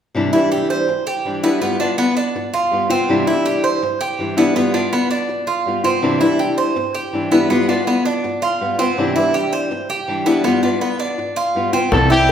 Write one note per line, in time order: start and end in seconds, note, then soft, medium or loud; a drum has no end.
0.15 0.32 C3 medium
0.15 0.33 E3 medium
0.15 0.33 G3 medium
0.15 0.32 D4 medium
0.15 0.32 E4 medium
0.33 0.87 E3 soft
0.33 0.88 G3 medium
0.33 0.88 D4 soft
0.33 0.87 E4 medium
0.33 0.51 E4 medium
0.52 0.70 G4 medium
0.70 1.06 C5 medium
0.88 muted nylon-string guitar stroke medium
1.07 1.42 G4 medium
1.25 1.43 E3 soft
1.25 1.43 G3 soft
1.25 1.43 D4 soft
1.25 1.42 E4 soft
1.43 1.62 E3 soft
1.43 1.60 G3 soft
1.43 1.60 B3 medium
1.43 1.61 D4 medium
1.43 1.61 E4 medium
1.61 1.79 G3 medium
1.61 1.79 B3 medium
1.61 1.80 B3 medium
1.61 1.78 F4 medium
1.80 2.35 B3 soft
1.80 1.98 D4 medium
1.80 2.34 F4 medium
1.98 2.16 B3 medium
2.17 2.53 D4 medium
2.35 muted nylon-string guitar stroke soft
2.54 2.89 F4 medium
2.71 2.89 G3 soft
2.71 2.90 B3 soft
2.71 2.88 F4 soft
2.90 3.09 B3 soft
2.90 3.26 C4 medium
2.90 3.08 F4 medium
3.09 3.27 C3 medium
3.09 3.27 E3 medium
3.09 3.27 G3 medium
3.09 3.27 D4 medium
3.09 3.26 E4 medium
3.27 3.81 E3 soft
3.27 3.82 G3 soft
3.27 3.83 D4 medium
3.27 3.82 E4 medium
3.27 3.45 E4 medium
3.46 3.64 G4 medium
3.64 4.00 C5 medium
3.82 muted nylon-string guitar stroke soft
4.01 4.37 G4 medium
4.19 4.37 E3 soft
4.19 4.37 G3 soft
4.19 4.37 D4 soft
4.19 4.36 E4 soft
4.37 4.56 E3 medium
4.37 4.54 G3 medium
4.37 4.55 B3 medium
4.37 4.56 D4 medium
4.37 4.55 E4 medium
4.55 4.73 G3 medium
4.55 4.74 B3 medium
4.55 4.73 F4 medium
4.74 5.28 B3 soft
4.74 4.92 D4 medium
4.74 5.29 F4 medium
4.93 5.10 B3 medium
5.11 5.47 D4 medium
5.29 muted nylon-string guitar stroke medium
5.47 5.83 F4 medium
5.66 5.84 G3 soft
5.66 5.84 B3 soft
5.66 5.83 F4 soft
5.84 6.03 B3 soft
5.84 6.20 C4 medium
5.84 6.02 F4 medium
6.02 6.20 C3 medium
6.02 6.21 E3 medium
6.02 6.21 G3 medium
6.02 6.20 D4 medium
6.02 6.19 E4 medium
6.20 6.75 E3 soft
6.20 6.76 G3 soft
6.20 6.77 D4 medium
6.20 6.75 E4 medium
6.20 6.39 E4 medium
6.39 6.57 G4 medium
6.58 6.94 C5 medium
6.76 muted nylon-string guitar stroke soft
6.95 7.31 G4 medium
7.13 7.31 E3 soft
7.13 7.31 G3 soft
7.13 7.31 D4 soft
7.13 7.30 E4 soft
7.32 7.51 E3 medium
7.32 7.48 G3 soft
7.32 7.49 B3 medium
7.32 7.50 D4 medium
7.32 7.49 E4 medium
7.49 7.68 G3 medium
7.49 7.68 B3 medium
7.49 7.67 F4 medium
7.68 8.23 B3 soft
7.68 7.87 D4 medium
7.68 8.23 F4 medium
7.87 8.05 B3 medium
8.05 8.41 D4 medium
8.24 muted nylon-string guitar stroke medium
8.42 8.78 F4 medium
8.60 8.78 G3 soft
8.60 8.79 B3 soft
8.60 8.77 F4 soft
8.79 8.98 B3 soft
8.79 9.15 C4 medium
8.79 8.97 F4 medium
8.98 9.15 C3 medium
8.98 9.15 E3 medium
8.98 9.16 G3 medium
8.98 9.15 D4 medium
8.98 9.15 E4 medium
9.16 9.70 E3 soft
9.16 9.71 G3 medium
9.16 9.72 D4 medium
9.16 9.34 E4 medium
9.16 9.70 E4 medium
9.34 9.52 G4 medium
9.53 9.88 C5 medium
9.71 muted nylon-string guitar stroke medium
9.90 10.25 G4 medium
10.08 10.26 E3 soft
10.08 10.26 G3 soft
10.08 10.26 D4 soft
10.08 10.25 E4 soft
10.26 10.45 E3 medium
10.26 10.43 G3 medium
10.26 10.43 B3 medium
10.26 10.44 D4 medium
10.26 10.44 E4 medium
10.44 10.62 G3 medium
10.44 10.62 B3 medium
10.44 10.63 B3 medium
10.44 10.62 F4 medium
10.63 11.18 B3 medium
10.63 10.81 D4 medium
10.63 11.18 F4 medium
10.81 10.99 B3 medium
11.00 11.36 D4 medium
11.18 muted nylon-string guitar stroke medium
11.36 11.72 F4 medium
11.55 11.73 G3 soft
11.55 11.73 B3 soft
11.55 11.72 F4 soft
11.73 11.92 B3 medium
11.73 11.91 C4 medium
11.73 11.91 F4 medium
11.92 12.32 C2 medium
11.92 12.10 C3 medium
11.92 12.10 E3 medium
11.92 12.10 G3 medium
11.92 12.10 C4 medium
11.92 12.09 E4 medium
11.92 12.09 A4 medium
11.92 high bongo medium
12.10 12.32 E3 soft
12.10 12.32 G3 medium
12.10 12.32 C4 medium
12.10 12.32 E4 medium
12.10 12.32 G4 medium